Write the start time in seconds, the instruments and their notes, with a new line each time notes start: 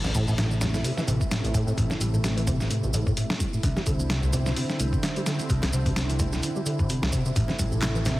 Already playing: analog synth pad C3 A3 E4
0.04 acid bass A1, snare, high conga, shaker
0.14 picked electric bass A1, acid bass A2, kick, closed hi-hat, shaker
0.28 acid bass A2, high conga, shaker
0.38 acid bass A2, snare, closed hi-hat, shaker
0.51 acid bass D3, shaker
0.61 acid bass G3, snare, closed hi-hat, low conga, shaker
0.74 acid bass A2, snare, shaker
0.84 acid bass C3, open hi-hat, shaker
0.97 acid bass E3, snare, shaker
1.07 picked electric bass A1, acid bass C3, closed hi-hat, shaker
1.21 acid bass A3, kick, shaker
1.31 acid bass A2, snare, closed hi-hat, shaker
1.44 acid bass A1, closed hi-hat, shaker
1.54 acid bass A2, kick, closed hi-hat, shaker
1.67 acid bass A2, shaker
1.77 picked electric bass A1, acid bass A2, kick, closed hi-hat, shaker
1.90 acid bass D3, snare, high conga, shaker
2.00 picked electric bass A1, acid bass G3, closed hi-hat, shaker
2.13 acid bass A2, high conga, shaker
2.24 acid bass C3, snare, closed hi-hat, shaker
2.37 acid bass E3, closed hi-hat, shaker
2.47 acid bass C3, kick, closed hi-hat, low conga, shaker
2.60 acid bass A3, snare, shaker
2.70 acid bass A2, closed hi-hat, shaker
2.83 acid bass A1, shaker
2.94 picked electric bass A1, acid bass A2, closed hi-hat, shaker
3.06 acid bass A2, kick, shaker
3.17 acid bass A2, closed hi-hat, shaker
3.30 acid bass D3, snare, shaker
3.40 acid bass G3, kick, closed hi-hat, shaker
3.53 acid bass A2, shaker
3.63 picked electric bass C2, acid bass D3, analog synth pad D3 C4 E4, kick, closed hi-hat, shaker
3.76 acid bass G3, snare, high conga, shaker
3.86 picked electric bass C2, acid bass D3, kick, closed hi-hat, shaker
3.99 acid bass C4, high conga, shaker
4.10 acid bass C3, snare, closed hi-hat, shaker
4.23 acid bass C2, shaker
4.33 acid bass C3, closed hi-hat, low conga, shaker
4.46 acid bass C3, snare, shaker
4.56 acid bass C3, open hi-hat, shaker
4.69 acid bass E3, snare, shaker
4.80 picked electric bass C2, acid bass A3, closed hi-hat, shaker
4.93 acid bass C3, kick, shaker
5.03 acid bass D3, snare, closed hi-hat, shaker
5.16 acid bass G3, closed hi-hat, shaker
5.26 acid bass D3, snare, closed hi-hat, shaker
5.39 acid bass C4, closed hi-hat, shaker
5.50 picked electric bass C2, acid bass C3, kick, closed hi-hat, shaker
5.62 acid bass C2, snare, closed hi-hat, high conga, shaker
5.73 picked electric bass C2, acid bass C3, closed hi-hat, shaker
5.86 acid bass C3, kick, closed hi-hat, high conga, shaker
5.96 acid bass C3, snare, closed hi-hat, shaker
6.09 acid bass E3, closed hi-hat, shaker
6.19 acid bass A3, kick, closed hi-hat, low conga, shaker
6.32 acid bass C3, snare, shaker
6.43 acid bass D3, closed hi-hat, shaker
6.56 acid bass G3, shaker
6.66 acid bass D3, closed hi-hat, shaker
6.79 picked electric bass G1, acid bass C4, kick, shaker
6.89 acid bass C3, closed hi-hat, shaker
7.02 acid bass C2, snare, shaker
7.12 acid bass C3, kick, closed hi-hat, shaker
7.25 acid bass C3, shaker
7.35 picked electric bass A1, acid bass A2, analog synth pad C3 A3, kick, closed hi-hat, shaker
7.48 acid bass D3, snare, high bongo, high conga, shaker
7.59 picked electric bass A1, acid bass G3, kick, closed hi-hat, shaker
7.71 acid bass A2, high conga, shaker
7.82 acid bass C3, snare, clap, closed hi-hat, high bongo, shaker
7.95 acid bass E3, shaker
8.05 acid bass C3, snare, closed hi-hat, high bongo, low conga, shaker